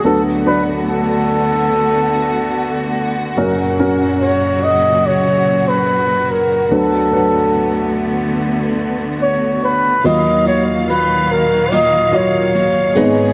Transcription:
<<
  \new Staff \with { instrumentName = "Flugelhorn" } { \time 4/4 \key dis \minor \tempo 4 = 72 a'8 b'8 a'2~ a'8 r8 | r4 cis''8 dis''8 cis''8. b'8. ais'8 | a'4. r4. cis''8 b'8 | dis''8 cis''8 b'8 ais'8 dis''8 cis''4. | }
  \new Staff \with { instrumentName = "Steel-string acoustic guitar" } { \time 4/4 \key dis \minor r1 | r1 | r1 | <dis fis ais eis' fis'>8 <ais eis' fis'>8 <fis eis' fis'>4 <dis fis ais eis' fis'>4 <fis ais eis' fis'>8 <gis, dis gis b dis' gis'>8 | }
  \new Staff \with { instrumentName = "Upright piano" } { \time 4/4 \key dis \minor <fis d' b'>8 <fis d' d''>2 r4. | <fis cis' ais'>8 <fis cis' ais'>2 r4. | <fis d' b'>8 <fis d' b'>2 r4. | <fis eis' dis''>2 r8 <fis eis' dis''>4 <gis dis' b'>8 | }
  \new Staff \with { instrumentName = "Upright piano" } { \clef bass \time 4/4 \key dis \minor <d, d>1 | <fis,, fis,>1 | <d, d>1 | <dis, dis>2.~ <dis, dis>8 <gis,, gis,>8 | }
  \new Staff \with { instrumentName = "String section" } { \clef bass \time 4/4 \key dis \minor << { fis'1~ | fis'1~ | fis'1 | eis''2.~ eis''8 gis'8 | } \\ { <d a b>1 | <ais, cis fis>1 | <d a b>1 | <ais, dis fis>2.~ <ais, dis fis>8 <dis gis b>8 | } >> }
>>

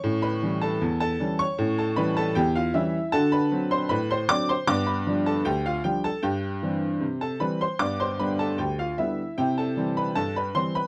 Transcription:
<<
  \new Staff \with { instrumentName = "Upright piano" } { \time 2/4 \key c \major \tempo 4 = 77 <des'' des'''>16 <b' b''>8 <a' a''>8 <a' a''>8 <cis'' cis'''>16~ | <cis'' cis'''>16 <a' a''>16 <b' b''>16 <a' a''>16 <g' g''>16 <f' f''>16 <e' e''>8 | <a' a''>16 <b' b''>8 <c'' c'''>16 <b' b''>16 <c'' c'''>16 <d'' d'''>16 <c'' c'''>16 | <d'' d'''>16 <b' b''>8 <a' a''>16 <g' g''>16 <f' f''>16 <g' g''>16 <a' a''>16 |
<g' g''>4~ <g' g''>16 <a' a''>16 <b' b''>16 <c'' c'''>16 | <d'' d'''>16 <c'' c'''>16 <b' b''>16 <a' a''>16 <g' g''>16 <f' f''>16 <e' e''>8 | <g' g''>16 <a' a''>8 <b' b''>16 <a' a''>16 <b' b''>16 <c'' c'''>16 <b' b''>16 | }
  \new Staff \with { instrumentName = "Upright piano" } { \clef bass \time 2/4 \key c \major <a, cis'>8 <e g cis'>8 e,8 <e g cis'>8 | <a, cis'>8 <e g cis'>8 e,8 <e g cis'>8 | <d fis'>8 <d fis c'>8 a,8 <d fis c'>8 | <g, b>8 <f g d'>8 d,8 <f g d'>8 |
g,8 <e g c'>8 c8 <e g c'>8 | <g, b>8 <d g b>8 d,8 <d g b>8 | <c e'>8 <e g c'>8 g,8 <e g c'>8 | }
>>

